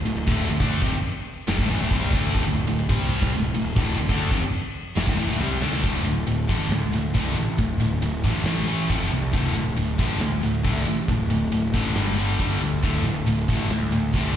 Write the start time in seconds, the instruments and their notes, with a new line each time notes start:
0.06 picked electric bass D1, overdriven electric guitar D2 A2
0.17 crash
0.27 picked electric bass D1, overdriven electric guitar D2 A2 D3, kick
0.50 picked electric bass D1, overdriven electric guitar D2 A2
0.60 picked electric bass D2, overdriven electric guitar D3 A3 D4, kick, crash
0.82 picked electric bass F1, overdriven electric guitar F2 C3, kick
1.04 crash
1.48 picked electric bass F1, overdriven electric guitar F2 C3, snare, crash
1.59 picked electric bass D1, overdriven electric guitar D2 A2, kick, snare
1.70 picked electric bass A1, overdriven electric guitar A2 E3
1.81 picked electric bass D1, overdriven electric guitar D2 A2
1.91 picked electric bass C2, overdriven electric guitar C3 G3 C4, kick, crash
2.13 picked electric bass D2, overdriven electric guitar D3 A3 D4, kick
2.34 picked electric bass D1, overdriven electric guitar D2 A2, kick, crash
2.46 picked electric bass D1, overdriven electric guitar D2 A2
2.68 picked electric bass D1, overdriven electric guitar D2 A2
2.79 crash
2.89 picked electric bass C2, overdriven electric guitar C3 G3 C4, kick
3.22 kick, snare, crash
3.33 picked electric bass D1, overdriven electric guitar D2 A2
3.55 picked electric bass D1, overdriven electric guitar D2 A2
3.66 crash
3.76 picked electric bass D1, overdriven electric guitar D2 A2 D3, kick
3.98 picked electric bass D1, overdriven electric guitar D2 A2
4.09 picked electric bass D2, overdriven electric guitar D3 A3 D4, kick, crash
4.31 picked electric bass F1, overdriven electric guitar F2 C3, kick
4.54 crash
4.96 picked electric bass F1, overdriven electric guitar F2 C3, snare, crash
5.07 picked electric bass D1, overdriven electric guitar D2 A2, kick
5.18 picked electric bass A1, overdriven electric guitar A2 E3
5.29 picked electric bass D1, overdriven electric guitar D2 A2
5.39 picked electric bass C2, overdriven electric guitar C3 G3 C4, snare
5.61 picked electric bass D2, overdriven electric guitar D3 A3 D4, snare
5.73 snare
5.83 picked electric bass D1, overdriven electric guitar D2 A2 D3, kick, ride
6.04 picked electric bass D1, overdriven electric guitar D2 A2, ride
6.27 picked electric bass D1, overdriven electric guitar D2 A2, ride
6.48 picked electric bass A1, overdriven electric guitar D2 A2 D3, kick, ride
6.70 picked electric bass D2, overdriven electric guitar D2 A2, snare, ride
6.92 overdriven electric guitar D2 A2, snare, ride
7.14 picked electric bass C2, overdriven electric guitar D2 A2 D3, kick, ride
7.36 picked electric bass A1, overdriven electric guitar D2 A2, ride
7.58 picked electric bass D1, overdriven electric guitar D2 A2, kick, ride
7.80 picked electric bass D1, overdriven electric guitar D2 A2, ride
8.02 picked electric bass D1, overdriven electric guitar D2 A2, ride
8.24 picked electric bass A1, overdriven electric guitar D2 A2 D3, kick, ride
8.46 picked electric bass A1, overdriven electric guitar A2 E3 A3, snare, ride
8.68 overdriven electric guitar A2 E3 A3, ride
8.89 picked electric bass F1, overdriven electric guitar F2 C3 F3, kick, ride
9.11 picked electric bass C2, overdriven electric guitar F2 C3, ride
9.32 picked electric bass D1, overdriven electric guitar D2 A2 D3, kick, ride
9.55 picked electric bass D1, overdriven electric guitar D2 A2, ride
9.76 picked electric bass D1, overdriven electric guitar D2 A2, ride
9.98 picked electric bass A1, overdriven electric guitar D2 A2 D3, kick, ride
10.20 overdriven electric guitar D2 A2, picked electric bass D2, snare, ride
10.41 overdriven electric guitar D2 A2, ride
10.63 picked electric bass C2, overdriven electric guitar D2 A2 D3, kick, ride
10.86 picked electric bass A1, overdriven electric guitar D2 A2, ride
11.08 picked electric bass D1, overdriven electric guitar D2 A2, kick, ride
11.30 picked electric bass D1, overdriven electric guitar D2 A2, ride
11.52 picked electric bass D1, overdriven electric guitar D2 A2, ride
11.74 picked electric bass A1, overdriven electric guitar D2 A2 D3, kick, ride
11.96 picked electric bass G1, overdriven electric guitar G2 D3 G3, snare, ride
12.18 overdriven electric guitar G2 D3 G3, ride
12.39 picked electric bass G1, overdriven electric guitar G2 D3 G3, kick, ride
12.61 picked electric bass D2, overdriven electric guitar G2 D3, ride
12.83 picked electric bass D1, overdriven electric guitar D2 A2 D3, kick, ride
13.04 picked electric bass D1, overdriven electric guitar D2 A2, ride
13.26 picked electric bass D1, overdriven electric guitar D2 A2, ride
13.48 picked electric bass A1, overdriven electric guitar D2 A2 D3, kick, ride
13.70 picked electric bass D2, overdriven electric guitar D2 A2, snare, ride
13.92 overdriven electric guitar D2 A2, snare, ride
14.14 picked electric bass C2, overdriven electric guitar D2 A2 D3, kick, ride